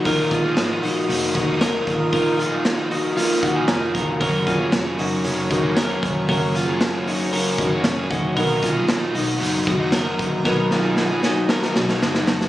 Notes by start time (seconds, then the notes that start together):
Already playing: A#4 D#5
0.03 A#1 A#2 F3 A#3 D#4 F4 A#4 F5 D#6, kick, hi-hat pedal, open hi-hat
0.31 F4 G#4, kick, hi-hat pedal, open hi-hat
0.44 F3 A#3 D#4
0.57 G#1, snare, hi-hat pedal, open hi-hat
0.71 F3 A#3 D#4
0.83 A#1 D#4 F#4, hi-hat pedal, open hi-hat
1.09 F1 A#2 F3 A#3 D#4, hi-hat pedal, open hi-hat
1.35 F1 D#4 F#4, kick, hi-hat pedal, open hi-hat
1.48 F3 A#3 D#4
1.61 F4 A#4, snare, hi-hat pedal, open hi-hat
1.74 F3 A#3 D#4
1.87 G#1, kick, hi-hat pedal, open hi-hat
2.11 A#1 A#2 F3 A#3 D#4 F4 A#4, kick, hi-hat pedal, open hi-hat
2.38 F4 G#4, hi-hat pedal, open hi-hat
2.51 F3 A#3 D#4
2.65 snare, hi-hat pedal, open hi-hat
2.77 F3 A#3 D#4
2.91 D#4 F#4, hi-hat pedal, open hi-hat
3.17 A#2 F3 A#3 D#4 F4, hi-hat pedal, open hi-hat
3.42 A#1 D#4 F#4 F#5, kick, hi-hat pedal, open hi-hat
3.55 F3 A#3 D#4 G#5
3.67 F1 F4 G#4 A#5, snare, hi-hat pedal, open hi-hat
3.80 F3 A#3 D#4
3.94 F1 F#4 A#4, kick, hi-hat pedal, open hi-hat
4.18 F#1 C#3 F#3 A#3 C#4 F#4 A#4 C#5 A#5 C#6, kick, hi-hat pedal, open hi-hat
4.23 C#4
4.47 F4 G#4, kick, hi-hat pedal, open hi-hat
4.58 F#3 A#3 C#4
4.72 F1, snare, hi-hat pedal, open hi-hat
4.85 F#3 A#3 C#4
4.98 F#1 D#4 F#4, hi-hat pedal, open hi-hat
5.24 F1 F#2 C#3 F#3 A#3 C#4, hi-hat pedal, open hi-hat
5.50 F1 D#4 F#4, kick, hi-hat pedal, open hi-hat
5.62 F#3 A#3 C#4
5.77 F#4 A#4, snare, hi-hat pedal, open hi-hat
5.89 F#3 A#3 C#4
6.03 F1, kick, hi-hat pedal, open hi-hat
6.27 F#1 C#3 F#3 A#3 C#4 F#4 A#4 F5, kick, hi-hat pedal, open hi-hat
6.31 A#4
6.55 F4 G#4, hi-hat pedal, open hi-hat
6.67 F#3 A#3 C#4
6.80 snare, hi-hat pedal, open hi-hat
6.93 F#3 A#3 C#4
7.07 D#4 F#4, hi-hat pedal, open hi-hat
7.32 F#2 C#3 F#3 A#3 C#4 F#4 A#4, hi-hat pedal, open hi-hat
7.58 F#1 D#4 F#4, kick, hi-hat pedal, open hi-hat
7.71 F#3 A#3 C#4
7.84 F1 C#4 G#4, snare, hi-hat pedal, open hi-hat
7.97 F#3 A#3 C#4
8.11 F1 D#4 F#4, kick, hi-hat pedal, open hi-hat
8.35 B1 B2 F#3 A#3 B3 D#4 F#4 A#4 D#5 A#5, kick, hi-hat pedal, open hi-hat
8.62 F4 G#4, kick, hi-hat pedal, open hi-hat
8.74 F#3 A#3 D#4
8.88 A#1, snare, hi-hat pedal, open hi-hat
9.00 F#3 A#3 D#4
9.15 B1 D#4 F#4, hi-hat pedal, open hi-hat
9.39 F#1 B2 F#3 A#3 D#4, hi-hat pedal, open hi-hat
9.67 F#1 D#4 F#4, kick, hi-hat pedal, open hi-hat
9.79 F#3 A#3 D#4
9.92 F#4 A#4, snare, hi-hat pedal, open hi-hat
10.05 F#3 A#3 D#4
10.19 A#1, kick, hi-hat pedal, open hi-hat
10.44 B1 B2 F#3 B3 D#4 F#4 A#4 B4 G#5, kick, snare
10.71 F4 G#4, snare
10.84 F#3 A#3 D#4
10.97 snare
11.10 F#3 D#4
11.23 D#4 F#4, snare
11.49 B2 F#3 D#4 F#4 A#4, snare
11.63 snare
11.76 B1 D#4 F#4, snare
11.89 F#3 A#3 D#4, snare
12.02 F#1 D#4 G#4, snare
12.15 F#3 D#4, snare
12.27 F#1 D#4 F#4, snare
12.41 snare